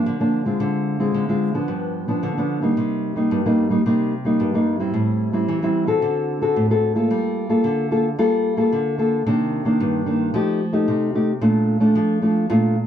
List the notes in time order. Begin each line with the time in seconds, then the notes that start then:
Already playing: F3 A#3 D4
0.06 D3
0.20 F3 A#3 D4
0.46 G#3 C4 F4
0.60 D3
1.00 G#3 C4 F4
1.14 D3
1.29 G#3 C4 F4
1.54 F3 B3 D4
1.68 G2
2.08 F3 B3 D4
2.23 D3
2.37 F3 B3 D4
2.62 G3 A#3 D#4
2.77 C3
3.16 G3 A#3 D#4
3.31 G2
3.46 G3 A#3 D#4
3.70 G3 A#3 D#4
3.86 C3 G3 A#3 D#4
4.25 G3 A#3 D#4
4.40 G2
4.54 G3 A#3 D#4
4.80 G3 C4 E4
4.94 A2
5.33 G3 C4 E4
5.48 E3
5.62 G3 C4 E4
5.87 C4 F#4 A4
6.02 D3
6.41 C4 F#4 A4
6.56 A2
6.70 C4 F#4 A4
6.95 A#3 F4 A4
7.11 G3
7.50 A#3 F4 A4
7.64 D3
7.91 A#3 F4 A4
8.19 G3 A#3 F4 A4
8.57 A#3 F4 A4
8.72 D3
8.98 A#3 F4 A4
9.26 C3 D#3 A#3 D4
9.65 D#3 A#3 D4
9.80 G2
10.06 D#3 A#3 D4
10.34 F3 A3 D#4 G4
10.73 A3 D#4 G4
10.88 C3
11.15 A3 D#4 G4
11.41 A#2 A3 D4 F4
11.80 A3 D4 F4
11.95 F3
12.22 A3 D4 F4
12.50 A#2 A3 D4 F4